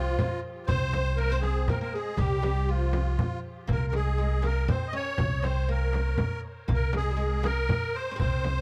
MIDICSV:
0, 0, Header, 1, 6, 480
1, 0, Start_track
1, 0, Tempo, 500417
1, 658, Time_signature, 3, 2, 24, 8
1, 8261, End_track
2, 0, Start_track
2, 0, Title_t, "Accordion"
2, 0, Program_c, 0, 21
2, 0, Note_on_c, 0, 65, 84
2, 382, Note_off_c, 0, 65, 0
2, 638, Note_on_c, 0, 72, 109
2, 1120, Note_on_c, 0, 70, 78
2, 1142, Note_off_c, 0, 72, 0
2, 1238, Note_on_c, 0, 72, 107
2, 1253, Note_off_c, 0, 70, 0
2, 1359, Note_off_c, 0, 72, 0
2, 1361, Note_on_c, 0, 68, 88
2, 1614, Note_on_c, 0, 70, 76
2, 1617, Note_off_c, 0, 68, 0
2, 1720, Note_off_c, 0, 70, 0
2, 1734, Note_on_c, 0, 70, 72
2, 1854, Note_on_c, 0, 68, 71
2, 1859, Note_off_c, 0, 70, 0
2, 2078, Note_on_c, 0, 67, 82
2, 2103, Note_off_c, 0, 68, 0
2, 2573, Note_on_c, 0, 65, 68
2, 2582, Note_off_c, 0, 67, 0
2, 3257, Note_off_c, 0, 65, 0
2, 3556, Note_on_c, 0, 70, 75
2, 3702, Note_off_c, 0, 70, 0
2, 3716, Note_on_c, 0, 70, 53
2, 3780, Note_off_c, 0, 70, 0
2, 3789, Note_on_c, 0, 68, 81
2, 4269, Note_on_c, 0, 70, 83
2, 4277, Note_off_c, 0, 68, 0
2, 4487, Note_off_c, 0, 70, 0
2, 4500, Note_on_c, 0, 72, 70
2, 4670, Note_on_c, 0, 75, 64
2, 4677, Note_off_c, 0, 72, 0
2, 4738, Note_off_c, 0, 75, 0
2, 4745, Note_on_c, 0, 73, 90
2, 5205, Note_on_c, 0, 72, 84
2, 5236, Note_off_c, 0, 73, 0
2, 5459, Note_off_c, 0, 72, 0
2, 5465, Note_on_c, 0, 70, 76
2, 6143, Note_off_c, 0, 70, 0
2, 6456, Note_on_c, 0, 70, 80
2, 6662, Note_off_c, 0, 70, 0
2, 6675, Note_on_c, 0, 68, 78
2, 7149, Note_on_c, 0, 70, 99
2, 7162, Note_off_c, 0, 68, 0
2, 7620, Note_on_c, 0, 72, 98
2, 7639, Note_off_c, 0, 70, 0
2, 7844, Note_off_c, 0, 72, 0
2, 7858, Note_on_c, 0, 72, 95
2, 8261, Note_off_c, 0, 72, 0
2, 8261, End_track
3, 0, Start_track
3, 0, Title_t, "Oud"
3, 0, Program_c, 1, 24
3, 0, Note_on_c, 1, 53, 69
3, 185, Note_off_c, 1, 53, 0
3, 189, Note_on_c, 1, 58, 69
3, 407, Note_off_c, 1, 58, 0
3, 649, Note_on_c, 1, 60, 79
3, 1132, Note_on_c, 1, 58, 67
3, 1147, Note_off_c, 1, 60, 0
3, 1259, Note_off_c, 1, 58, 0
3, 1265, Note_on_c, 1, 60, 89
3, 1624, Note_on_c, 1, 58, 77
3, 1632, Note_off_c, 1, 60, 0
3, 1726, Note_off_c, 1, 58, 0
3, 1737, Note_on_c, 1, 58, 65
3, 1861, Note_off_c, 1, 58, 0
3, 1873, Note_on_c, 1, 56, 58
3, 2090, Note_off_c, 1, 56, 0
3, 2094, Note_on_c, 1, 55, 70
3, 2313, Note_off_c, 1, 55, 0
3, 2325, Note_on_c, 1, 55, 63
3, 2578, Note_off_c, 1, 55, 0
3, 2580, Note_on_c, 1, 53, 52
3, 3260, Note_off_c, 1, 53, 0
3, 3524, Note_on_c, 1, 58, 69
3, 3771, Note_off_c, 1, 58, 0
3, 3775, Note_on_c, 1, 56, 50
3, 4000, Note_off_c, 1, 56, 0
3, 4012, Note_on_c, 1, 56, 59
3, 4238, Note_off_c, 1, 56, 0
3, 4241, Note_on_c, 1, 58, 68
3, 4490, Note_on_c, 1, 60, 74
3, 4497, Note_off_c, 1, 58, 0
3, 4725, Note_off_c, 1, 60, 0
3, 4729, Note_on_c, 1, 61, 71
3, 5198, Note_off_c, 1, 61, 0
3, 5202, Note_on_c, 1, 60, 63
3, 5454, Note_on_c, 1, 58, 62
3, 5458, Note_off_c, 1, 60, 0
3, 6138, Note_off_c, 1, 58, 0
3, 6406, Note_on_c, 1, 58, 67
3, 6652, Note_off_c, 1, 58, 0
3, 6656, Note_on_c, 1, 56, 55
3, 6816, Note_off_c, 1, 56, 0
3, 6820, Note_on_c, 1, 55, 50
3, 6871, Note_off_c, 1, 55, 0
3, 6875, Note_on_c, 1, 56, 67
3, 7125, Note_off_c, 1, 56, 0
3, 7129, Note_on_c, 1, 58, 75
3, 7783, Note_on_c, 1, 61, 60
3, 7808, Note_off_c, 1, 58, 0
3, 7824, Note_off_c, 1, 61, 0
3, 7828, Note_on_c, 1, 60, 79
3, 8261, Note_off_c, 1, 60, 0
3, 8261, End_track
4, 0, Start_track
4, 0, Title_t, "Upright bass"
4, 0, Program_c, 2, 32
4, 0, Note_on_c, 2, 36, 81
4, 143, Note_off_c, 2, 36, 0
4, 664, Note_on_c, 2, 36, 84
4, 1582, Note_off_c, 2, 36, 0
4, 2091, Note_on_c, 2, 36, 87
4, 3015, Note_off_c, 2, 36, 0
4, 3536, Note_on_c, 2, 36, 91
4, 4458, Note_off_c, 2, 36, 0
4, 4974, Note_on_c, 2, 36, 86
4, 5898, Note_off_c, 2, 36, 0
4, 6421, Note_on_c, 2, 36, 85
4, 7343, Note_off_c, 2, 36, 0
4, 7864, Note_on_c, 2, 36, 84
4, 8261, Note_off_c, 2, 36, 0
4, 8261, End_track
5, 0, Start_track
5, 0, Title_t, "Darbuka"
5, 180, Note_on_c, 9, 64, 73
5, 276, Note_off_c, 9, 64, 0
5, 657, Note_on_c, 9, 64, 85
5, 753, Note_off_c, 9, 64, 0
5, 895, Note_on_c, 9, 63, 68
5, 991, Note_off_c, 9, 63, 0
5, 1377, Note_on_c, 9, 63, 63
5, 1472, Note_off_c, 9, 63, 0
5, 1612, Note_on_c, 9, 64, 80
5, 1708, Note_off_c, 9, 64, 0
5, 2091, Note_on_c, 9, 64, 82
5, 2187, Note_off_c, 9, 64, 0
5, 2336, Note_on_c, 9, 63, 64
5, 2432, Note_off_c, 9, 63, 0
5, 2815, Note_on_c, 9, 63, 60
5, 2911, Note_off_c, 9, 63, 0
5, 3059, Note_on_c, 9, 64, 87
5, 3154, Note_off_c, 9, 64, 0
5, 3298, Note_on_c, 9, 62, 23
5, 3394, Note_off_c, 9, 62, 0
5, 3537, Note_on_c, 9, 64, 82
5, 3633, Note_off_c, 9, 64, 0
5, 3770, Note_on_c, 9, 63, 62
5, 3865, Note_off_c, 9, 63, 0
5, 4266, Note_on_c, 9, 63, 61
5, 4362, Note_off_c, 9, 63, 0
5, 4500, Note_on_c, 9, 64, 85
5, 4596, Note_off_c, 9, 64, 0
5, 4976, Note_on_c, 9, 64, 86
5, 5072, Note_off_c, 9, 64, 0
5, 5217, Note_on_c, 9, 63, 66
5, 5313, Note_off_c, 9, 63, 0
5, 5689, Note_on_c, 9, 63, 62
5, 5785, Note_off_c, 9, 63, 0
5, 5933, Note_on_c, 9, 64, 84
5, 6029, Note_off_c, 9, 64, 0
5, 6416, Note_on_c, 9, 64, 89
5, 6511, Note_off_c, 9, 64, 0
5, 6647, Note_on_c, 9, 63, 75
5, 6743, Note_off_c, 9, 63, 0
5, 6895, Note_on_c, 9, 62, 30
5, 6991, Note_off_c, 9, 62, 0
5, 7135, Note_on_c, 9, 63, 72
5, 7231, Note_off_c, 9, 63, 0
5, 7381, Note_on_c, 9, 64, 88
5, 7477, Note_off_c, 9, 64, 0
5, 7862, Note_on_c, 9, 64, 85
5, 7958, Note_off_c, 9, 64, 0
5, 8261, End_track
6, 0, Start_track
6, 0, Title_t, "Frame drum"
6, 177, Note_on_c, 9, 64, 85
6, 273, Note_off_c, 9, 64, 0
6, 656, Note_on_c, 9, 64, 81
6, 752, Note_off_c, 9, 64, 0
6, 900, Note_on_c, 9, 64, 62
6, 996, Note_off_c, 9, 64, 0
6, 1367, Note_on_c, 9, 64, 57
6, 1463, Note_off_c, 9, 64, 0
6, 1611, Note_on_c, 9, 64, 87
6, 1707, Note_off_c, 9, 64, 0
6, 2084, Note_on_c, 9, 64, 73
6, 2179, Note_off_c, 9, 64, 0
6, 2333, Note_on_c, 9, 64, 67
6, 2429, Note_off_c, 9, 64, 0
6, 2812, Note_on_c, 9, 64, 67
6, 2908, Note_off_c, 9, 64, 0
6, 3058, Note_on_c, 9, 64, 81
6, 3154, Note_off_c, 9, 64, 0
6, 3532, Note_on_c, 9, 64, 69
6, 3628, Note_off_c, 9, 64, 0
6, 3774, Note_on_c, 9, 64, 64
6, 3870, Note_off_c, 9, 64, 0
6, 4249, Note_on_c, 9, 64, 60
6, 4345, Note_off_c, 9, 64, 0
6, 4495, Note_on_c, 9, 64, 84
6, 4591, Note_off_c, 9, 64, 0
6, 4968, Note_on_c, 9, 64, 96
6, 5064, Note_off_c, 9, 64, 0
6, 5215, Note_on_c, 9, 64, 67
6, 5311, Note_off_c, 9, 64, 0
6, 5701, Note_on_c, 9, 64, 62
6, 5797, Note_off_c, 9, 64, 0
6, 5925, Note_on_c, 9, 64, 91
6, 6021, Note_off_c, 9, 64, 0
6, 6412, Note_on_c, 9, 64, 79
6, 6508, Note_off_c, 9, 64, 0
6, 6649, Note_on_c, 9, 64, 64
6, 6745, Note_off_c, 9, 64, 0
6, 7136, Note_on_c, 9, 64, 68
6, 7232, Note_off_c, 9, 64, 0
6, 7377, Note_on_c, 9, 64, 84
6, 7473, Note_off_c, 9, 64, 0
6, 7861, Note_on_c, 9, 64, 67
6, 7957, Note_off_c, 9, 64, 0
6, 8100, Note_on_c, 9, 64, 69
6, 8196, Note_off_c, 9, 64, 0
6, 8261, End_track
0, 0, End_of_file